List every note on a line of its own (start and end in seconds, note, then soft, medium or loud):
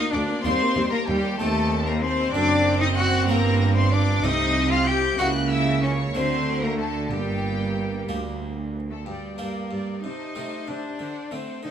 0.00 0.11 D2 medium
0.00 0.14 A#3 medium
0.00 0.41 A#3 medium
0.00 0.14 D#4 medium
0.00 0.42 F4 medium
0.00 0.42 A#4 soft
0.00 0.14 D#5 loud
0.12 0.21 D2 medium
0.12 0.42 D2 medium
0.12 0.22 D2 medium
0.12 0.43 D4 medium
0.12 0.29 D4 medium
0.12 0.45 D5 loud
0.12 0.21 D6 loud
0.30 0.45 A#3 medium
0.44 0.73 D#2 medium
0.44 0.53 D#2 medium
0.44 0.60 G3 medium
0.44 1.35 A#3 medium
0.44 0.91 C4 loud
0.44 1.36 D#4 medium
0.44 1.36 G4 medium
0.44 0.93 C5 loud
0.44 0.91 C6 loud
0.62 0.77 A#3 medium
0.76 0.84 D#2 medium
0.76 1.05 D#2 medium
0.76 0.85 D#2 medium
0.76 0.92 G3 medium
0.92 0.98 A#3 medium
0.92 1.08 A#3 medium
0.92 1.08 A#4 loud
0.92 1.08 A#5 loud
1.08 1.36 D#2 medium
1.08 1.16 D#2 medium
1.08 1.39 G3 loud
1.08 1.23 G3 medium
1.08 1.39 G4 loud
1.08 1.39 G5 loud
1.24 1.40 A#3 medium
1.39 2.30 D#2 medium
1.39 2.30 D#2 loud
1.39 2.30 D#2 medium
1.39 1.86 A3 loud
1.39 2.30 C4 medium
1.39 4.20 C4 medium
1.39 2.31 D#4 medium
1.39 2.31 G4 medium
1.39 1.87 A4 loud
1.39 1.86 A5 loud
1.86 2.03 A#3 medium
1.86 1.93 A#4 medium
1.86 2.03 A#5 loud
2.01 2.33 C4 loud
2.01 2.34 C5 loud
2.01 2.33 C6 loud
2.33 3.27 F#1 medium
2.33 3.27 F#2 medium
2.33 3.25 F#2 medium
2.33 3.25 C4 medium
2.33 2.80 D4 loud
2.33 3.25 D4 medium
2.33 3.26 A4 medium
2.33 2.81 D5 loud
2.33 2.80 D6 loud
2.80 2.87 D#4 loud
2.80 2.97 D#5 loud
2.80 2.88 D#6 loud
2.97 3.28 F#4 loud
2.97 3.29 F#5 loud
2.97 3.28 F#6 loud
3.28 4.24 G1 medium
3.28 4.24 G2 loud
3.28 4.20 G2 medium
3.28 4.20 A#3 medium
3.28 3.78 A#3 loud
3.28 4.20 D4 soft
3.28 4.20 G4 medium
3.28 3.76 A#4 loud
3.28 3.75 A#5 loud
3.77 3.94 C4 medium
3.77 3.92 C5 medium
3.77 3.92 C6 loud
3.92 4.25 D4 medium
3.92 4.24 D5 loud
3.92 4.24 D6 loud
4.23 5.19 C2 medium
4.23 5.19 C3 medium
4.23 5.15 C3 medium
4.23 5.15 A3 medium
4.23 5.17 C4 medium
4.23 5.15 C4 medium
4.23 4.72 D#4 loud
4.23 5.15 A4 medium
4.23 4.71 D#5 loud
4.23 4.71 D#6 loud
4.71 4.88 F4 loud
4.71 4.88 F5 loud
4.71 4.87 F6 loud
4.87 5.18 G4 loud
4.87 4.96 G5 loud
4.87 5.19 G6 loud
5.19 6.13 C#2 medium
5.19 6.11 C#3 medium
5.19 6.13 C#3 loud
5.19 6.15 A#3 medium
5.19 6.11 A#3 medium
5.19 6.11 E4 medium
5.19 5.27 F#4 loud
5.19 6.11 G4 medium
5.19 5.27 F#5 loud
5.19 5.51 F#6 loud
5.50 5.82 E4 medium
5.50 5.82 E5 medium
5.50 5.83 E6 loud
5.82 5.90 C#4 medium
5.82 6.15 C#5 medium
5.82 6.15 C#6 loud
6.14 7.09 D2 medium
6.14 7.09 D3 medium
6.14 7.07 D3 medium
6.14 7.07 A3 medium
6.14 7.12 A3 medium
6.14 6.64 C4 medium
6.14 7.08 D4 soft
6.14 7.08 F#4 medium
6.14 6.63 C5 loud
6.14 6.63 C6 loud
6.62 6.77 A#3 medium
6.62 6.79 A#4 medium
6.62 6.79 A#5 loud
6.78 6.86 A3 medium
6.78 7.11 A4 medium
6.78 7.11 A5 medium
7.11 8.09 G1 medium
7.11 8.05 G2 medium
7.11 8.09 G2 medium
7.11 8.07 G3 medium
7.11 8.86 A#3 medium
7.11 8.07 G4 medium
7.11 8.09 G5 loud
8.09 9.03 D2 medium
8.09 9.05 D2 medium
8.09 8.79 A#3 medium
8.09 8.79 D4 soft
8.09 8.80 G4 medium
8.90 8.97 A3 medium
8.90 9.06 A4 medium
9.06 9.36 G2 soft
9.06 9.15 G2 soft
9.06 9.37 G3 medium
9.06 9.39 G4 soft
9.06 9.39 D5 soft
9.06 9.38 G5 soft
9.38 9.68 G2 soft
9.38 9.47 G2 soft
9.38 10.02 A#3 soft
9.38 9.86 A#3 soft
9.38 9.86 D4 soft
9.38 9.86 G4 soft
9.38 10.04 A#4 soft
9.38 9.71 D5 soft
9.38 9.70 G5 soft
9.71 10.00 G2 soft
9.71 9.80 G2 soft
9.71 10.04 D5 soft
9.71 10.03 G5 soft
10.03 10.33 C3 soft
10.03 10.13 C3 soft
10.03 10.69 D#4 medium
10.03 10.35 C5 soft
10.03 10.67 D#5 medium
10.03 10.35 A5 soft
10.35 10.65 C3 soft
10.35 10.45 C3 soft
10.35 10.82 A3 soft
10.35 10.82 C4 soft
10.35 10.83 D#4 soft
10.35 10.67 C5 soft
10.35 10.68 A5 soft
10.68 10.97 C3 soft
10.68 10.77 C3 soft
10.68 11.33 D4 medium
10.68 10.99 C5 soft
10.68 11.32 D5 medium
10.68 11.00 A5 soft
10.99 11.28 D3 soft
10.99 11.08 D3 soft
10.99 11.31 C5 soft
10.99 11.31 F#5 soft
11.31 11.60 D3 soft
11.31 11.40 D3 soft
11.31 11.71 A3 soft
11.31 11.63 C4 medium
11.31 11.71 C4 soft
11.31 11.63 C5 soft
11.31 11.64 C5 medium
11.31 11.63 F#5 soft
11.63 11.71 D3 soft
11.63 11.70 D#4 medium
11.63 11.71 C5 soft
11.63 11.71 D#5 soft
11.63 11.71 F#5 soft